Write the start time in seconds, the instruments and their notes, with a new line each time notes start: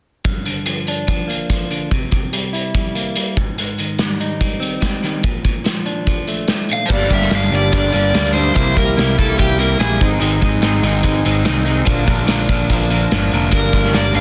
0.24 overdriven electric guitar G2, kick, closed hi-hat
0.46 overdriven electric guitar D3, closed hi-hat
0.66 overdriven electric guitar F3, closed hi-hat
0.87 overdriven electric guitar D4, closed hi-hat
1.07 overdriven electric guitar F3, kick, closed hi-hat
1.27 overdriven electric guitar A#3, closed hi-hat
1.50 overdriven electric guitar F3, kick, closed hi-hat
1.71 overdriven electric guitar D3, closed hi-hat
1.91 overdriven electric guitar C3, kick, closed hi-hat
2.11 overdriven electric guitar C3, kick, closed hi-hat
2.33 overdriven electric guitar G3, closed hi-hat
2.53 overdriven electric guitar E4, closed hi-hat
2.74 overdriven electric guitar G3, kick, closed hi-hat
2.95 overdriven electric guitar A#3, closed hi-hat
3.16 overdriven electric guitar G3, closed hi-hat
3.37 overdriven electric guitar G#2, kick, closed hi-hat
3.58 overdriven electric guitar G#2, closed hi-hat
3.78 overdriven electric guitar D#3, closed hi-hat
3.99 overdriven electric guitar G3, snare, closed hi-hat, tambourine
4.20 overdriven electric guitar D#4, closed hi-hat
4.41 overdriven electric guitar G3, kick, closed hi-hat
4.60 overdriven electric guitar C4, closed hi-hat
4.81 overdriven electric guitar G3, kick, snare, closed hi-hat, tambourine
5.03 overdriven electric guitar D#3, snare, closed hi-hat
5.23 overdriven electric guitar A#2, kick, closed hi-hat
5.44 overdriven electric guitar A#2, kick, closed hi-hat
5.64 overdriven electric guitar F3, snare, closed hi-hat, tambourine
5.86 overdriven electric guitar D4, closed hi-hat
6.07 overdriven electric guitar F3, kick, closed hi-hat
6.27 overdriven electric guitar A3, closed hi-hat
6.48 overdriven electric guitar F3, snare, closed hi-hat, tambourine
6.69 overdriven electric guitar A#2, closed hi-hat
6.73 overdriven electric guitar F5
6.86 overdriven electric guitar C5
6.90 picked electric bass G1, overdriven electric guitar G2 D3 G3 A#3 D4 G4 D5, kick, crash
7.10 picked electric bass G1, overdriven electric guitar G2 D3 G3 A#3 D4 G4, kick, closed hi-hat
7.14 overdriven electric guitar E5
7.22 snare
7.31 picked electric bass G1, overdriven electric guitar G2 D3 G3 A#3 D4 G4, snare, closed hi-hat, tambourine
7.36 overdriven electric guitar F5
7.52 picked electric bass G1, overdriven electric guitar G2 D3 G3 A#3 D4 G4 D5, closed hi-hat
7.73 picked electric bass G1, overdriven electric guitar G2 D3 G3 A#3 D4 G4 D5, kick, closed hi-hat
7.93 picked electric bass G1, overdriven electric guitar G2 D3 G3 A#3 D4 G4 D5, closed hi-hat
8.14 picked electric bass D2, overdriven electric guitar G2 D3 G3 A#3 D4 G4, snare, closed hi-hat, tambourine
8.34 overdriven electric guitar G2 D3 G3 A#3 D4 G4 C5, closed hi-hat
8.54 picked electric bass C2, overdriven electric guitar C3 G3 A#3 E4 G4 C5, kick, closed hi-hat
8.76 picked electric bass C2, overdriven electric guitar C3 G3 A#3 E4 G4 A#4, kick, closed hi-hat
8.96 picked electric bass C2, overdriven electric guitar C3 G3 A#3 E4 G4, snare, closed hi-hat, tambourine
9.17 picked electric bass C2, overdriven electric guitar C3 G3 A#3 E4 G4 A4, kick, closed hi-hat
9.37 picked electric bass C2, overdriven electric guitar C3 G3 A#3 E4 G4, kick, closed hi-hat
9.58 overdriven electric guitar C3 G3 A#3 E4 G4 A#4, closed hi-hat
9.79 picked electric bass A#1, overdriven electric guitar C3 G3 A#3 E4 G4 G#4, snare, closed hi-hat, tambourine
10.01 picked electric bass G#1, overdriven electric guitar G#2 D#3 G#3 C4 D#4 G#4, kick, closed hi-hat
10.21 picked electric bass G#1, overdriven electric guitar G#2 D#3 G#3 C4 D#4 G#4, closed hi-hat
10.42 picked electric bass G#1, overdriven electric guitar G#2 D#3 G#3 C4 D#4 G#4, kick, closed hi-hat
10.61 picked electric bass G#1, overdriven electric guitar G#2 D#3 G#3 C4, snare, closed hi-hat, tambourine
10.65 overdriven electric guitar D#4 G#4
10.82 picked electric bass G#1, overdriven electric guitar G#2 D#3 G#3 C4 D#4 G#4, closed hi-hat
11.03 picked electric bass G#1, overdriven electric guitar G#2 D#3 G#3 C4 D#4 G#4, kick, closed hi-hat
11.25 picked electric bass G#1, overdriven electric guitar G#2 D#3 G#3 C4 D#4 G#4, closed hi-hat
11.45 picked electric bass C2, overdriven electric guitar G#2 D#3 G#3 C4 D#4 G#4, snare, closed hi-hat, tambourine
11.66 overdriven electric guitar G#2 D#3 G#3 C4 D#4 G#4, closed hi-hat
11.86 picked electric bass A#1, overdriven electric guitar A#2 D3 F3 A#3 D4 A#4, kick, closed hi-hat
12.07 picked electric bass A#1, overdriven electric guitar A#2 D3 F3 A#3 D4 A#4, kick, closed hi-hat
12.27 picked electric bass A#1, overdriven electric guitar A#2 D3 F3 A#3 D4 A#4, snare, closed hi-hat, tambourine
12.49 picked electric bass A#1, overdriven electric guitar A#2 D3 F3 A#3 D4 A#4, kick, closed hi-hat
12.70 picked electric bass A#1, overdriven electric guitar A#2 D3 F3 A#3 D4 A#4, kick, closed hi-hat
12.90 overdriven electric guitar A#2 D3 F3 A#3 D4 A#4, closed hi-hat
13.11 picked electric bass G1, overdriven electric guitar A#2 D3 F3 A#3 D4 A#4, snare, closed hi-hat, tambourine
13.31 picked electric bass F1, overdriven electric guitar A#2 D3 F3 A#3 D4 A#4, closed hi-hat
13.52 picked electric bass G1, overdriven electric guitar G2 D3 G3 A#3 D4 A#4, kick, closed hi-hat
13.73 picked electric bass G1, overdriven electric guitar G2 D3 G3 A#3 D4 A#4, kick, closed hi-hat
13.84 snare
13.93 picked electric bass G1, overdriven electric guitar G2 D3 G3 A#3 D4 A#4 D5, snare, closed hi-hat, tambourine
14.14 picked electric bass G1, overdriven electric guitar G2 D3 G3 A#3 D4 A#4 F5, closed hi-hat